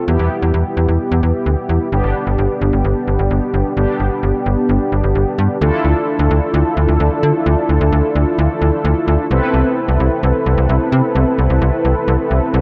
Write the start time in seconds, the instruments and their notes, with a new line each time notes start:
0.08 fm bass E2, analog polysynth B3 E4 G4
0.19 fm bass E2
0.42 fm bass E2
0.54 fm bass E2
0.77 fm bass E2
0.88 fm bass E2
1.11 fm bass E2
1.23 fm bass E2
1.46 fm bass D2
1.69 fm bass E2
1.92 fm bass G1, analog polysynth B3 D4 G4
2.04 fm bass G1
2.27 fm bass G1
2.38 fm bass G1
2.61 fm bass G1
2.73 fm bass G1
2.85 fm bass G1
3.08 fm bass G1
3.19 fm bass G1
3.31 fm bass G1
3.54 fm bass G1
3.77 fm bass G1, analog polysynth B3 D4 G4
4.00 fm bass G1
4.23 fm bass G1
4.46 fm bass G1
4.69 fm bass G1
4.92 fm bass G1
5.04 fm bass G1
5.15 fm bass G1
5.38 fm bass G2
5.61 fm bass D2, analog polysynth D4 E4 F4 A4
5.84 fm bass D2
6.19 fm bass D2
6.31 fm bass D2
6.54 fm bass D2
6.77 fm bass D2
6.88 fm bass D2
7.00 fm bass D2
7.23 fm bass D3
7.46 fm bass D2
7.69 fm bass D2
7.81 fm bass D2
7.92 fm bass D2
8.15 fm bass D2
8.38 fm bass D2
8.61 fm bass D2
8.85 fm bass D2
9.08 fm bass D2
9.31 fm bass C2, analog polysynth C4 E4 A4 B4
9.54 fm bass C2
9.88 fm bass C2
10.00 fm bass C2
10.23 fm bass C2
10.46 fm bass C2
10.58 fm bass C2
10.69 fm bass C2
10.92 fm bass C3
11.15 fm bass C2
11.38 fm bass C2
11.50 fm bass C2
11.62 fm bass C2
11.85 fm bass C2
12.08 fm bass C2
12.31 fm bass C2
12.54 fm bass C2